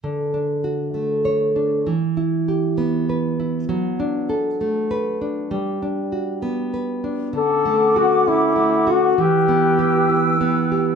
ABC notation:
X:1
M:6/8
L:1/8
Q:3/8=66
K:D
V:1 name="Flute section"
z6 | z6 | z6 | z6 |
[Cfd']6 | [Bge']6 |]
V:2 name="Flugelhorn"
z6 | z6 | z6 | z6 |
A2 F E2 F | G4 z2 |]
V:3 name="Nylon-string guitar"
D, D F A, c D | E, E G B, B E | F, D A A, B D | G, D F B, B D |
D, A, F C A, F | E, B, G E B, G |]